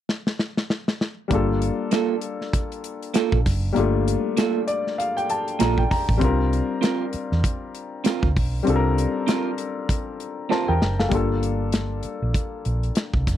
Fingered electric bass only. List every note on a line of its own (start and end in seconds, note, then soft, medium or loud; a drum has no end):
1.31 1.69 G1 medium
3.33 3.43 A#1 medium
3.46 3.70 F#1 medium
3.77 4.14 G1 loud
5.61 5.84 A#1 medium
6.09 6.19 A1 medium
6.22 6.59 C2 loud
7.14 muted fingered electric bass stroke soft
7.32 7.42 E2 medium
8.23 8.37 D2 medium
8.37 8.60 B1 medium
8.68 9.05 C2 medium
10.69 10.79 E2 medium
10.82 11.06 F#1 medium
11.12 12.00 G1 medium
12.04 muted fingered electric bass stroke soft
12.22 12.32 A#1 medium
12.66 12.89 A#1 medium
13.14 13.24 C2 medium
13.28 13.37 F#1 medium